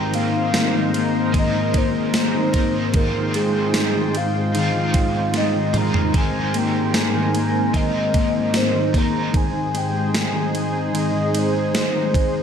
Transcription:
0.00 12.43 G#2 medium
0.00 0.74 D#3 medium
0.00 0.13 G#3 medium
0.00 1.32 G#3 medium
0.00 12.43 G#3 medium
0.00 0.33 C4 medium
0.00 1.34 C4 medium
0.00 1.36 D#4 medium
0.00 6.10 D#4 medium
0.00 1.37 A#4 loud
0.00 2.91 A#4 medium
0.00 12.43 C5 medium
0.00 0.16 G5 loud
0.14 0.53 A#3 medium
0.14 0.95 F5 loud
0.14 ride soft
0.34 1.14 C4 medium
0.54 0.93 A#3 medium
0.54 snare loud
0.54 ride medium
0.54 tambourine medium
0.74 1.34 D#3 medium
0.94 1.74 A#3 medium
0.94 ride soft
1.14 1.35 C4 medium
1.32 1.54 D#3 medium
1.32 2.56 G#3 medium
1.32 2.56 C4 medium
1.32 1.95 C4 medium
1.32 kick medium
1.32 ride medium
1.36 2.55 D#4 medium
1.36 2.52 A#4 medium
1.36 1.79 D#5 loud
1.54 2.34 D#3 medium
1.74 2.13 A#3 medium
1.74 2.16 C5 loud
1.74 kick medium
1.74 ride soft
1.95 2.75 C4 medium
2.14 2.53 A#3 medium
2.14 2.98 C5 loud
2.14 snare loud
2.14 ride medium
2.14 tambourine medium
2.34 2.94 D#3 medium
2.53 3.02 A#3 medium
2.53 2.94 D#4 soft
2.53 2.94 A#4 medium
2.53 kick medium
2.53 ride soft
2.58 2.94 C4 soft
2.75 2.95 C4 medium
2.91 3.14 D#3 medium
2.91 4.52 G#3 medium
2.91 3.54 C4 medium
2.91 4.54 D#4 medium
2.91 6.11 G5 medium
2.91 kick loud
2.91 ride medium
2.96 4.55 F4 medium
2.96 3.37 A#4 loud
2.96 4.57 C5 medium
3.15 3.94 D#3 medium
3.34 3.74 G#3 medium
3.34 4.19 G#4 loud
3.34 ride soft
3.54 4.35 C4 medium
3.74 snare loud
3.74 ride medium
3.74 tambourine medium
3.95 4.55 D#3 medium
4.15 4.95 G#3 medium
4.15 4.56 F5 medium
4.15 ride soft
4.35 4.55 C4 medium
4.52 4.75 D#3 medium
4.52 6.12 G#3 medium
4.52 5.15 C4 medium
4.52 5.78 D#4 medium
4.52 5.75 F4 medium
4.52 5.31 F5 loud
4.52 ride medium
4.58 5.73 C5 medium
4.75 5.55 D#3 medium
4.94 5.35 G#3 medium
4.94 kick medium
4.94 ride medium
5.15 5.95 C4 medium
5.34 5.75 G#3 medium
5.34 5.79 D#5 loud
5.34 snare medium
5.34 ride medium
5.55 6.14 D#3 medium
5.73 6.53 G#3 medium
5.73 6.15 F4 soft
5.73 6.14 C5 soft
5.73 mid tom medium
5.73 ride soft
5.77 6.15 D#4 soft
5.77 6.16 A#5 loud
5.94 6.15 C4 medium
5.94 floor tom medium
6.12 6.33 D#3 medium
6.12 7.73 G#3 medium
6.12 6.74 C4 medium
6.12 7.75 C4 medium
6.12 12.43 D#4 medium
6.12 9.31 A#4 medium
6.12 kick loud
6.12 ride medium
6.17 7.77 D#4 medium
6.17 7.78 A#4 medium
6.17 6.59 G#5 loud
6.34 7.14 D#3 medium
6.54 6.93 A#3 medium
6.54 6.97 G5 loud
6.54 ride soft
6.75 7.54 C4 medium
6.94 7.33 A#3 medium
6.94 7.78 G#5 loud
6.94 snare loud
6.94 ride medium
6.94 tambourine medium
7.15 7.73 D#3 medium
7.34 8.12 A#3 medium
7.34 ride soft
7.54 7.74 C4 medium
7.73 7.93 D#3 medium
7.73 8.96 G#3 medium
7.73 8.33 C4 medium
7.73 8.96 C4 medium
7.73 8.59 D#5 loud
7.73 kick medium
7.73 ride medium
7.77 8.96 D#4 medium
7.77 8.92 A#4 medium
7.94 8.72 D#3 medium
8.14 8.53 A#3 medium
8.14 kick medium
8.14 ride soft
8.34 9.12 C4 medium
8.54 8.92 A#3 medium
8.54 8.99 C5 loud
8.54 snare loud
8.54 ride medium
8.54 tambourine medium
8.73 9.32 D#3 medium
8.93 9.42 A#3 medium
8.93 9.35 D#4 medium
8.93 9.34 A#4 soft
8.93 kick medium
8.93 ride soft
8.98 9.36 C4 soft
8.98 9.36 A#5 loud
9.13 9.34 C4 medium
9.33 9.53 D#3 medium
9.33 9.93 C4 medium
9.33 12.43 G#4 medium
9.33 kick loud
9.33 ride medium
9.37 9.79 G#5 loud
9.53 10.32 D#3 medium
9.74 10.13 G#3 medium
9.74 10.20 G5 loud
9.74 ride soft
9.93 10.72 C4 medium
10.13 10.53 G#3 medium
10.13 snare loud
10.13 ride medium
10.13 tambourine medium
10.19 10.96 G#5 loud
10.32 10.92 D#3 medium
10.53 11.32 G#3 medium
10.53 ride soft
10.73 10.93 C4 medium
10.93 11.13 D#3 medium
10.93 11.53 C4 medium
10.93 ride medium
10.97 11.40 D#5 loud
11.14 11.94 D#3 medium
11.32 11.73 G#3 medium
11.32 ride medium
11.39 11.77 C5 loud
11.54 12.33 C4 medium
11.73 12.14 G#3 medium
11.73 snare loud
11.73 ride medium
11.73 tambourine medium
11.78 12.43 C5 loud
11.94 12.43 D#3 medium
12.14 12.43 G#3 medium
12.14 kick loud
12.14 ride soft
12.34 12.43 C4 medium

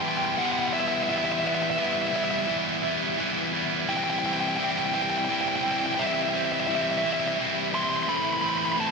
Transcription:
0.00 0.38 E3 medium
0.00 0.41 E4 medium
0.00 0.08 G5 loud
0.05 0.39 G3 medium
0.05 0.40 B3 medium
0.05 0.17 G5 loud
0.17 0.25 G5 loud
0.25 0.33 G5 medium
0.34 0.45 F#5 medium
0.34 0.38 G5 medium
0.38 1.08 E3 medium
0.38 0.76 G3 medium
0.38 0.74 B3 medium
0.38 0.73 E4 medium
0.46 0.52 F#5 medium
0.52 0.59 F#5 medium
0.59 0.67 F#5 medium
0.68 0.73 F#5 medium
0.73 1.09 G3 medium
0.73 1.10 B3 medium
0.73 1.11 E4 medium
0.73 0.80 E5 loud
0.80 0.88 E5 medium
0.88 0.95 E5 medium
0.96 1.03 E5 medium
1.03 1.09 E5 medium
1.09 1.77 E3 medium
1.09 1.46 G3 medium
1.09 1.44 B3 medium
1.09 1.43 E4 loud
1.09 1.17 E5 medium
1.18 1.25 E5 loud
1.25 1.32 E5 medium
1.32 1.39 E5 medium
1.40 1.80 E4 medium
1.40 1.47 E5 medium
1.45 1.78 G3 medium
1.45 1.79 B3 medium
1.45 1.54 E5 medium
1.55 1.62 E5 medium
1.63 1.70 E5 medium
1.70 1.78 E5 medium
1.78 2.47 E3 loud
1.78 2.15 G3 loud
1.78 2.14 B3 medium
1.78 2.12 E4 loud
1.78 1.86 E5 medium
1.87 1.93 E5 medium
1.93 2.01 E5 medium
2.02 2.07 E5 medium
2.07 2.15 E5 medium
2.12 2.48 G3 medium
2.12 2.49 B3 medium
2.12 2.50 E4 medium
2.12 2.24 E5 medium
2.24 2.30 E5 medium
2.31 2.38 E5 medium
2.39 2.46 E5 medium
2.47 3.17 E3 medium
2.47 2.85 G3 medium
2.47 2.84 B3 medium
2.47 2.82 E4 medium
2.47 2.54 E5 medium
2.83 3.19 G3 medium
2.83 3.19 B3 medium
2.83 3.20 E4 medium
3.18 3.88 E3 medium
3.18 3.55 G3 medium
3.18 3.54 B3 medium
3.18 3.52 E4 loud
3.53 3.89 G3 medium
3.53 3.90 B3 medium
3.53 3.90 E4 medium
3.88 4.57 E3 medium
3.88 4.25 G3 loud
3.88 4.24 C4 medium
3.88 4.22 E4 loud
3.88 3.96 G5 loud
3.97 4.03 G5 medium
4.04 4.10 G5 loud
4.10 4.18 G5 medium
4.19 4.25 G5 loud
4.23 4.58 G3 medium
4.23 4.59 C4 medium
4.23 4.60 E4 medium
4.23 4.33 G5 medium
4.34 4.40 G5 loud
4.40 4.48 G5 loud
4.48 4.56 G5 loud
4.57 5.28 E3 medium
4.57 4.95 G3 medium
4.57 4.94 C4 medium
4.57 4.93 E4 medium
4.57 4.63 G5 medium
4.63 4.71 G5 loud
4.71 4.78 G5 medium
4.78 4.85 G5 loud
4.85 4.93 G5 medium
4.93 5.29 G3 medium
4.93 5.30 C4 medium
4.93 5.30 E4 medium
4.93 5.02 G5 loud
5.02 5.10 G5 medium
5.10 5.18 G5 loud
5.18 5.24 G5 medium
5.25 5.97 E3 medium
5.25 5.32 G5 loud
5.29 5.66 G3 loud
5.29 5.65 C4 medium
5.29 5.63 E4 loud
5.29 5.41 G5 medium
5.41 5.48 G5 loud
5.48 5.55 G5 medium
5.56 5.63 G5 loud
5.63 5.99 G3 medium
5.63 5.99 C4 medium
5.63 6.00 E4 medium
5.63 5.71 G5 medium
5.71 5.79 G5 loud
5.79 5.86 G5 medium
5.86 5.94 G5 loud
5.94 6.68 E3 medium
5.94 6.02 G5 medium
5.99 6.36 G3 loud
5.99 6.35 C4 loud
5.99 6.33 E4 loud
5.99 6.06 E5 medium
6.07 6.14 E5 medium
6.14 6.22 E5 medium
6.22 6.28 E5 medium
6.29 6.36 E5 medium
6.33 6.69 G3 medium
6.33 6.70 C4 medium
6.33 6.71 E4 medium
6.33 6.44 E5 medium
6.45 6.52 E5 medium
6.52 6.60 E5 medium
6.60 6.67 E5 medium
6.67 7.38 E3 medium
6.67 7.05 G3 medium
6.67 7.04 C4 medium
6.67 6.74 E5 medium
6.71 7.02 E4 medium
6.75 6.81 E5 medium
6.82 6.89 E5 medium
6.91 6.97 E5 medium
6.98 7.05 E5 medium
7.03 7.39 G3 medium
7.03 7.40 C4 medium
7.03 7.41 E4 medium
7.03 7.12 E5 medium
7.13 7.20 E5 medium
7.20 7.27 E5 medium
7.28 7.35 E5 medium
7.38 8.08 E3 medium
7.38 7.75 G3 medium
7.38 7.74 C4 medium
7.38 7.73 E4 medium
7.73 8.08 G3 medium
7.73 8.09 C4 medium
7.73 8.10 E4 medium
7.73 7.82 C6 loud
7.83 7.89 C6 medium
7.89 7.96 C6 loud
7.96 8.03 C6 medium
8.03 8.09 C6 medium
8.07 8.91 A2 loud
8.07 8.77 E3 loud
8.07 8.45 A3 loud
8.07 8.44 C4 loud
8.07 8.42 E4 loud
8.07 8.16 B5 loud
8.17 8.24 B5 medium
8.24 8.32 B5 loud
8.33 8.41 B5 medium
8.41 8.78 A3 medium
8.41 8.79 C4 medium
8.41 8.80 E4 medium
8.41 8.49 B5 loud
8.49 8.57 B5 loud
8.58 8.65 B5 loud
8.65 8.72 B5 medium
8.72 8.80 B5 medium
8.77 8.91 E3 medium
8.77 8.91 A3 medium
8.77 8.91 C4 medium
8.77 8.91 E4 medium
8.77 8.87 A5 loud
8.87 8.91 A5 medium

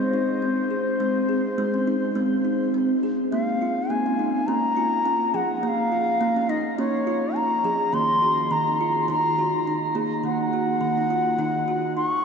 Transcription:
0.00 0.79 G#3 medium
0.00 0.13 C4 medium
0.00 2.74 C5 medium
0.14 0.42 D#4 medium
0.42 0.71 C4 medium
0.70 1.00 G#4 medium
1.00 1.48 G#3 medium
1.00 1.29 C4 medium
1.29 1.58 G#4 medium
1.58 2.06 G#3 medium
1.74 1.87 C#4 medium
1.87 2.16 D#4 medium
2.15 3.10 G#3 medium
2.15 2.45 C4 medium
2.45 2.74 D#4 medium
2.74 3.03 C4 medium
3.03 3.32 G#4 medium
3.32 3.80 A#3 medium
3.32 3.92 F5 medium
3.62 3.90 F4 medium
3.90 4.37 A#3 medium
3.90 4.48 G#5 medium
4.06 4.19 C#4 medium
4.19 4.48 D#4 medium
4.47 4.71 A#3 medium
4.47 4.77 C#4 medium
4.47 5.36 A#5 loud
4.77 5.05 F4 medium
5.06 5.34 C#4 medium
5.34 5.58 F3 medium
5.34 5.63 G#4 medium
5.34 5.57 F#5 medium
5.57 5.64 F#5 medium
5.63 6.10 A#3 medium
5.63 5.69 F#5 medium
5.68 6.51 F5 medium
5.92 6.21 F4 medium
6.21 6.68 A#3 medium
6.36 6.49 C#4 medium
6.49 6.78 D#4 medium
6.49 6.78 D#5 medium
6.78 7.02 A#3 medium
6.78 7.07 C#4 medium
6.78 7.38 C#5 medium
7.07 7.36 F4 medium
7.36 7.65 C#4 medium
7.36 7.96 A#5 loud
7.64 7.88 F3 medium
7.64 7.94 G#4 medium
7.93 8.40 D#3 medium
7.93 8.23 A#3 medium
7.93 8.53 C6 loud
8.22 8.51 F#4 medium
8.51 8.98 D#3 medium
8.51 9.09 A#5 medium
8.68 8.80 D#4 medium
8.81 9.09 F4 medium
9.08 9.32 D#3 medium
9.08 9.38 D#4 medium
9.08 9.94 A#5 medium
9.39 9.67 F#4 medium
9.67 9.96 D#4 medium
9.95 10.19 A#3 medium
9.95 10.24 G#4 medium
10.24 10.71 D#3 medium
10.24 10.53 A#3 medium
10.24 11.93 F#5 medium
10.53 10.82 F#4 medium
10.81 11.28 D#3 medium
10.97 11.10 D#4 medium
11.10 11.39 F4 medium
11.39 11.62 D#3 medium
11.39 11.68 D#4 medium
11.68 11.97 F#4 medium
11.96 12.25 D#4 medium
11.96 12.25 C#6 medium

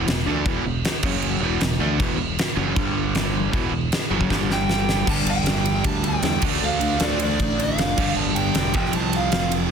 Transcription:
0.07 0.25 E1 medium
0.07 0.22 E2 medium
0.07 0.22 B2 medium
0.07 snare loud
0.07 crash medium
0.18 snare soft
0.26 0.44 D2 loud
0.26 0.45 D3 medium
0.26 0.45 A3 loud
0.26 0.45 D4 loud
0.44 0.63 E1 medium
0.44 0.63 E2 loud
0.44 0.64 B2 loud
0.44 0.64 E3 loud
0.44 kick loud
0.44 crash medium
0.64 0.82 E1 medium
0.64 0.80 E2 medium
0.64 0.80 B2 medium
0.85 snare loud
0.85 crash medium
1.03 1.39 F#1 medium
1.03 1.41 F#2 loud
1.03 1.41 C#3 loud
1.03 1.42 F#3 loud
1.03 kick loud
1.03 crash loud
1.22 crash medium
1.40 1.59 E1 medium
1.40 1.59 E2 medium
1.40 1.60 B2 loud
1.40 1.61 E3 loud
1.60 1.79 E1 medium
1.60 1.76 E2 medium
1.60 1.76 B2 medium
1.60 snare loud
1.60 crash medium
1.72 snare soft
1.79 1.97 D2 loud
1.79 1.98 D3 loud
1.79 1.99 A3 loud
1.79 1.99 D4 loud
1.99 2.17 E1 medium
1.99 2.17 E2 loud
1.99 2.18 B2 loud
1.99 2.18 E3 loud
1.99 kick loud
1.99 crash medium
2.18 2.36 E1 medium
2.18 2.34 E2 medium
2.18 2.34 B2 medium
2.38 snare loud
2.38 crash medium
2.57 2.75 F#1 loud
2.57 2.74 F#2 loud
2.57 2.76 C#3 loud
2.57 2.76 F#3 loud
2.75 3.49 G1 medium
2.75 3.52 G2 loud
2.75 3.52 D3 loud
2.75 3.53 G3 loud
2.75 kick loud
2.75 crash medium
3.15 snare loud
3.15 crash medium
3.53 3.71 E1 medium
3.53 3.70 E2 loud
3.53 3.71 B2 medium
3.53 3.72 E3 loud
3.53 kick loud
3.53 crash medium
3.71 3.90 E1 medium
3.71 3.87 E2 medium
3.71 3.87 B2 medium
3.92 snare loud
3.92 crash medium
4.03 snare soft
4.10 4.29 F#1 loud
4.10 4.29 F#2 medium
4.10 4.31 C#3 loud
4.10 4.31 F#3 loud
4.21 kick medium
4.29 5.03 G1 medium
4.29 5.04 G2 loud
4.29 5.07 D3 loud
4.29 5.07 G3 loud
4.29 kick loud
4.29 snare medium
4.50 5.09 G5 medium
4.50 snare medium
4.69 snare medium
4.89 snare loud
5.06 5.24 G1 medium
5.06 6.02 G2 medium
5.06 6.03 D3 loud
5.06 6.03 G3 loud
5.06 5.26 A5 loud
5.06 kick loud
5.06 crash loud
5.25 5.43 G1 medium
5.25 ride medium
5.31 5.86 G5 loud
5.44 5.81 G1 loud
5.44 snare loud
5.44 ride loud
5.66 ride medium
5.84 6.21 D2 medium
5.84 6.05 A5 loud
5.84 kick loud
5.84 ride loud
6.04 6.22 G2 medium
6.04 6.23 D3 medium
6.04 6.22 G3 medium
6.04 6.43 G5 loud
6.04 ride medium
6.23 6.41 E2 medium
6.23 6.41 G2 medium
6.23 6.41 D3 medium
6.23 snare loud
6.23 ride loud
6.27 6.43 G3 medium
6.42 6.60 D2 medium
6.42 7.37 D3 medium
6.42 7.38 A3 loud
6.42 kick loud
6.42 crash loud
6.46 7.39 D4 loud
6.62 6.80 D2 medium
6.62 7.03 F5 medium
6.81 6.99 D2 medium
6.81 ride medium
7.00 7.36 D2 loud
7.00 7.21 D5 medium
7.00 snare loud
7.00 ride loud
7.20 7.57 D5 medium
7.20 ride medium
7.39 7.75 A1 medium
7.39 7.57 D3 medium
7.39 7.58 A3 medium
7.39 7.57 D4 loud
7.39 kick loud
7.39 ride loud
7.58 7.97 D3 medium
7.58 7.96 A3 medium
7.58 7.95 D4 medium
7.58 ride medium
7.63 8.20 F5 loud
7.78 7.96 F1 medium
7.78 snare loud
7.78 ride loud
7.97 8.15 G1 loud
7.97 8.73 G2 loud
7.97 8.74 D3 loud
7.97 8.74 G3 loud
7.97 kick loud
7.97 crash loud
8.16 8.34 G1 medium
8.16 8.35 A5 loud
8.35 8.53 G1 medium
8.35 8.75 G5 loud
8.35 ride medium
8.55 8.75 E1 loud
8.55 snare loud
8.55 ride loud
8.73 8.92 F1 loud
8.73 9.69 F2 loud
8.73 9.68 C3 loud
8.73 9.70 F3 loud
8.73 8.93 G5 loud
8.73 kick loud
8.73 ride medium
8.85 snare soft
8.93 9.30 C2 loud
8.93 9.14 A5 loud
8.93 ride loud
9.13 9.50 F5 medium
9.13 ride medium
9.32 9.71 F1 loud
9.32 snare loud
9.32 ride loud
9.52 ride medium

